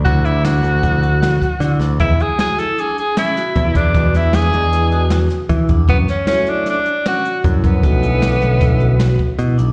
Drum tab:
HH |xxxxxxxxxx|xxxxxxxxxx|xxxxxxxxxx|xxxxxxxxxx|
SD |--o---o-oo|--oo--oo--|-oo---oo--|-oo-o-o---|
BD |o---o--o--|o-------oo|o-------oo|o-------oo|

HH |xxxxxxxxxx|
SD |--o-o-o---|
BD |o---o--o--|